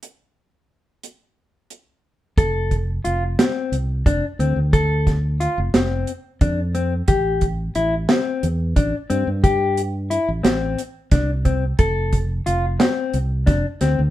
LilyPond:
<<
  \new Staff \with { instrumentName = "Clean electric guitar" } { \time 7/8 \key f \major \tempo 4 = 89 r2. r8 | a'4 f'8 c'4 d'8 c'8 | a'4 f'8 c'4 d'8 c'8 | g'4 e'8 c'4 d'8 c'8 |
g'4 e'8 c'4 d'8 c'8 | a'4 f'8 c'4 d'8 c'8 | }
  \new Staff \with { instrumentName = "Fingered electric bass" } { \clef bass \time 7/8 \key f \major r2. r8 | f,,4 f,,8 r8 c,8 f,,16 r16 d,16 d,16~ | d,4~ d,16 f,,16 f,,8 r8 f,4 | a,,4 a,,8 r8 e,8 a,,16 r16 g,16 g,16~ |
g,4~ g,16 a,,16 a,,8 r8 c,4 | f,,4 f,,8 r8 c,8 f,,16 r16 d,16 d,16 | }
  \new DrumStaff \with { instrumentName = "Drums" } \drummode { \time 7/8 hh4. hh4 hh4 | <hh bd>8 <hh bd>8 hh8 <hh sn>8 hh8 <hh bd>8 hh8 | <hh bd>8 <hh bd sn>8 hh8 <hh sn>8 hh8 <hh bd>8 hh8 | <hh bd>8 <hh bd>8 hh8 <hh sn>8 hh8 <hh bd>8 hh8 |
<hh bd>8 hh8 hh8 <hh sn>8 hh8 <hh bd sn>8 <hh bd>8 | <hh bd>8 <hh bd>8 hh8 <hh sn>8 hh8 <hh bd sn>8 <hh sn>8 | }
>>